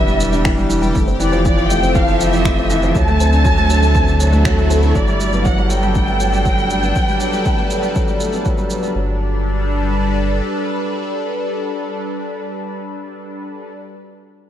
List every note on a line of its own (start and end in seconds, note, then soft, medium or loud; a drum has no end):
0.00 0.93 E1 medium
0.00 0.44 E3 loud
0.00 0.95 E3 medium
0.00 0.07 G3 loud
0.00 0.20 B3 medium
0.00 0.95 B3 medium
0.00 0.32 D4 medium
0.00 0.95 E4 medium
0.00 2.96 G4 medium
0.00 0.70 E5 loud
0.07 0.19 G3 loud
0.07 shaker soft
0.20 0.32 B3 medium
0.20 shaker medium
0.32 0.44 D4 medium
0.32 shaker soft
0.44 0.57 E3 loud
0.44 finger snap medium
0.44 kick loud
0.44 shaker soft
0.57 0.69 G3 loud
0.57 shaker soft
0.69 0.82 E3 loud
0.69 shaker medium
0.82 0.94 G3 loud
0.82 shaker soft
0.95 2.93 F1 medium
0.95 1.07 A3 medium
0.95 kick loud
0.95 shaker soft
1.07 1.19 C4 medium
1.07 shaker soft
1.19 1.32 E3 loud
1.19 1.44 D5 medium
1.19 shaker medium
1.27 3.75 C4 medium
1.32 1.44 F3 loud
1.32 shaker soft
1.41 1.57 E3 loud
1.41 3.67 A4 medium
1.45 1.68 D5 loud
1.45 kick loud
1.45 shaker soft
1.57 1.69 F3 loud
1.57 shaker soft
1.69 1.82 A3 medium
1.69 1.95 G5 loud
1.69 shaker medium
1.83 1.95 C4 medium
1.83 shaker soft
1.95 2.07 E3 loud
1.95 2.20 F5 loud
1.95 kick loud
1.95 shaker soft
2.08 2.20 F3 loud
2.08 shaker soft
2.20 2.32 E3 loud
2.20 2.95 E5 loud
2.20 shaker medium
2.33 2.45 F3 loud
2.33 shaker soft
2.45 2.57 A3 medium
2.45 finger snap medium
2.45 kick loud
2.45 shaker soft
2.58 2.70 C4 medium
2.58 shaker soft
2.70 2.82 E3 loud
2.70 shaker medium
2.83 2.95 F3 loud
2.83 shaker soft
2.94 4.93 D2 medium
2.94 4.95 D3 medium
2.94 3.07 F#3 loud
2.94 4.70 A5 loud
2.94 kick medium
2.94 shaker soft
3.05 4.95 A3 medium
3.05 3.20 A3 loud
3.05 shaker soft
3.20 3.32 C4 medium
3.20 shaker medium
3.33 3.44 D4 medium
3.33 shaker soft
3.44 3.57 F#3 loud
3.44 kick loud
3.44 shaker soft
3.57 3.69 A3 loud
3.57 shaker soft
3.69 3.82 F#3 loud
3.69 shaker medium
3.83 6.56 F#3 medium
3.83 3.94 A3 loud
3.83 6.55 E4 medium
3.83 shaker soft
3.95 4.07 C4 medium
3.95 kick loud
3.95 shaker soft
4.08 4.20 D4 medium
4.08 shaker soft
4.20 4.32 F#3 loud
4.20 4.91 A4 medium
4.20 shaker medium
4.32 4.44 A3 loud
4.32 shaker soft
4.44 4.57 F#3 loud
4.44 finger snap medium
4.44 kick loud
4.44 shaker soft
4.57 4.69 A3 loud
4.57 shaker soft
4.70 4.82 C4 medium
4.70 shaker medium
4.82 4.94 D4 medium
4.82 shaker soft
4.95 6.93 G1 medium
4.95 5.07 F#3 medium
4.95 5.45 D5 medium
4.95 kick medium
4.95 shaker soft
5.07 5.19 G3 medium
5.07 shaker soft
5.20 5.32 A3 medium
5.20 8.95 A4 medium
5.20 shaker medium
5.33 5.45 B3 medium
5.33 shaker soft
5.44 5.57 F#3 medium
5.44 8.95 D4 medium
5.44 5.70 F#5 loud
5.44 kick loud
5.44 shaker soft
5.58 5.70 G3 medium
5.58 shaker soft
5.70 5.82 F#3 loud
5.70 8.45 G5 loud
5.70 shaker medium
5.83 5.95 G3 loud
5.83 shaker soft
5.95 6.07 A3 medium
5.95 kick loud
5.95 shaker soft
6.08 6.20 B3 medium
6.08 shaker soft
6.20 6.32 F#3 medium
6.20 shaker medium
6.33 6.44 G3 medium
6.33 shaker soft
6.42 6.57 F#3 loud
6.42 8.96 B4 medium
6.42 kick medium
6.42 shaker soft
6.58 6.70 G3 medium
6.58 shaker soft
6.70 6.82 A3 medium
6.70 shaker medium
6.83 6.94 B3 medium
6.83 shaker soft
6.95 7.07 F#3 medium
6.95 kick medium
6.95 shaker soft
7.08 7.20 G3 medium
7.08 shaker soft
7.20 7.32 F#3 medium
7.20 shaker medium
7.33 7.45 G3 medium
7.33 shaker soft
7.45 7.57 A3 medium
7.45 kick loud
7.45 shaker soft
7.58 7.70 B3 medium
7.58 shaker soft
7.70 7.82 F#3 medium
7.70 shaker medium
7.83 7.94 G3 medium
7.83 shaker soft
7.95 8.07 F#3 medium
7.95 kick medium
7.95 shaker soft
8.08 8.19 G3 medium
8.08 shaker soft
8.20 8.32 A3 medium
8.20 shaker medium
8.32 8.45 B3 medium
8.32 shaker soft
8.45 8.57 F#3 medium
8.45 kick medium
8.45 shaker soft
8.58 8.70 G3 medium
8.58 shaker soft
8.70 8.82 F#3 medium
8.70 shaker medium
8.83 8.95 G3 medium
8.83 shaker soft
8.95 10.41 G1 medium
8.95 9.18 F#3 medium
8.95 13.71 G3 medium
9.03 13.71 D4 medium
9.11 13.72 A4 medium
9.19 13.72 B4 medium